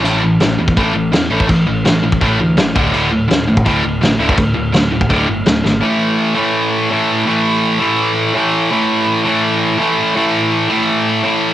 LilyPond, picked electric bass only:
\new Staff \with { instrumentName = "Picked electric bass" } { \clef bass \time 4/4 \key a \mixolydian \tempo 4 = 166 a,,4 a,,8 e,8 a,,8 a,,8 e,8 a,,8 | a,,8 a,,8 a,,4 a,,8 d,8 a,,8 d,,8 | d,,4 d,,8 a,,8 d,,8 d,,8 a,,8 d,,8 | d,,8 d,,8 d,,4 d,,8 g,,8 d,,8 gis,,8 |
r1 | r1 | r1 | r1 | }